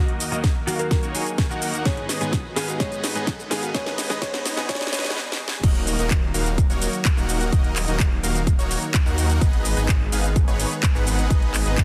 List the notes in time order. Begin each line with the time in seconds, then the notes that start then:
Already playing: D#2 D#3 F#3 A#3 D#4 F#4 A#4 D#5, riser
0.08 closed hi-hat
0.20 open hi-hat, shaker
0.31 D#3 F#3 A#3 D#4 F#4 A#4 D#5, closed hi-hat, shaker
0.44 kick, snare, closed hi-hat, shaker
0.67 D#3 F#3 A#3 D#4 F#4 A#4 F5, open hi-hat, shaker
0.79 A#4, closed hi-hat, shaker
0.91 A#4, kick, snare, closed hi-hat, shaker
1.03 A#3 D#4 F#4 A#4 C#5, closed hi-hat, shaker
1.14 D#3 F#3 A#3 G#4, open hi-hat, shaker
1.27 closed hi-hat, shaker
1.38 kick, snare, closed hi-hat, shaker
1.49 D#3 F#3 A#3 D#4 F#4 A#4 F#5, shaker
1.62 open hi-hat, shaker
1.74 closed hi-hat, shaker
1.85 G#2 D#3 G#3 B3 D#4 G#4 B4 C#5 D#5, kick, snare, closed hi-hat, shaker
1.97 closed hi-hat
2.09 snare, open hi-hat, shaker
2.20 G#2 D#3 G#3 B3 D#4 G#4 B4 D#5, closed hi-hat, shaker
2.33 kick, snare, closed hi-hat, shaker
2.56 G#2 D#3 G#3 B3 D#4 G#4 B4 F5, snare, open hi-hat, shaker
2.68 F#4, closed hi-hat, shaker
2.79 G#2 D#3 G#3 B3 D#4 G#4 B4 C#5 D#5, kick, snare, closed hi-hat, shaker
2.92 closed hi-hat, shaker
3.04 snare, open hi-hat, shaker
3.15 G#2 D#3 G#3 B3 D#4 G#4 B4 D#5, closed hi-hat, shaker
3.27 kick, snare, closed hi-hat, shaker
3.40 shaker
3.50 G#2 D#3 G#3 B3 D#4 G#4 B4 F5, snare, open hi-hat, shaker
3.63 F#4, closed hi-hat, shaker
3.74 G#2 D#3 G#3 B3 D#4 G#4 B4 C#5 D#5, kick, snare, closed hi-hat, shaker
3.86 snare, closed hi-hat
3.98 snare, open hi-hat, shaker
4.09 G#2 D#3 G#3 B3 D#4 G#4 B4 D#5, snare, closed hi-hat, shaker
4.21 G#2 D#3 G#3 B3 D#4 G#4 B4 C#5 D#5, kick, snare, closed hi-hat, shaker
4.34 snare, closed hi-hat
4.46 snare, open hi-hat, shaker
4.56 G#2 D#3 G#3 B3 D#4 G#4 B4 D#5, snare, closed hi-hat, shaker
4.68 G#2 D#3 G#3 B3 D#4 G#4 B4 C#5 D#5, kick, snare, closed hi-hat, shaker
4.75 snare
4.81 snare, closed hi-hat, shaker
4.87 snare
4.92 G#2 D#3 G#3 B3 D#4 G#4 B4 C#5 D#5, snare, open hi-hat, shaker
4.99 snare
5.05 snare, closed hi-hat, shaker
5.10 snare
5.16 snare
5.32 snare
5.48 snare
5.63 D#1 D#3 F#3 A#3 D#4 F#4 A#4 D#5, kick, closed hi-hat, crash, shaker
5.75 closed hi-hat
5.87 open hi-hat, shaker
5.99 D#1 A#3 D#4 F#4 A#4 D#5, closed hi-hat, shaker
6.11 kick, clap, closed hi-hat, shaker
6.34 D#1 A#3 D#4 F#4 A#4 F5, open hi-hat, shaker
6.46 closed hi-hat, shaker
6.58 kick, closed hi-hat, shaker
6.70 D#1 A#3 D#4 F#4 A#4 C#5, closed hi-hat, shaker
6.82 open hi-hat, shaker
6.93 closed hi-hat, shaker
7.05 kick, clap, closed hi-hat, shaker
7.17 D#1 A#3 D#4 F#4 A#4 F#5, shaker
7.29 open hi-hat, shaker
7.41 closed hi-hat, shaker
7.52 D#1 A#3 D#4 F#4 A#4 D#5, kick, closed hi-hat, shaker
7.64 closed hi-hat
7.76 clap, open hi-hat, shaker
7.88 D#1 A#3 D#4 F#4 A#4 D#5, closed hi-hat, shaker
8.00 kick, clap, closed hi-hat, shaker
8.23 D#1 A#3 D#4 F#4 A#4 F5, open hi-hat, shaker
8.35 closed hi-hat, shaker
8.47 kick, closed hi-hat, shaker
8.59 D#1 A#3 D#4 F#4 A#4 C#5, closed hi-hat, shaker
8.71 open hi-hat, shaker
8.83 closed hi-hat, shaker
8.94 kick, clap, closed hi-hat, shaker
9.06 D#2 A#3 D#4 F#4 A#4 F#5, shaker
9.18 open hi-hat, shaker
9.30 closed hi-hat, shaker
9.41 G#1 G#3 B3 D#4 G#4 B4 D#5, kick, closed hi-hat, shaker
9.53 closed hi-hat
9.65 open hi-hat, shaker
9.77 G#1 B3 D#4 G#4 B4 D#5, closed hi-hat, shaker
9.89 kick, clap, closed hi-hat, shaker
10.12 G#1 B3 D#4 G#4 B4 F5, open hi-hat, shaker
10.24 closed hi-hat, shaker
10.36 kick, closed hi-hat, shaker
10.48 G#1 B3 D#4 G#4 B4 C#5, closed hi-hat, shaker
10.60 open hi-hat, shaker
10.71 closed hi-hat, shaker
10.83 kick, clap, closed hi-hat, shaker
10.95 G#1 B3 D#4 G#4 B4 F#5, shaker
11.07 open hi-hat, shaker
11.19 closed hi-hat, shaker
11.30 G#1 B3 D#4 G#4 B4 D#5, kick, closed hi-hat, shaker
11.42 closed hi-hat
11.54 clap, open hi-hat, shaker
11.66 G#1 B3 D#4 G#4 B4 D#5, closed hi-hat, shaker
11.78 kick, clap, closed hi-hat, shaker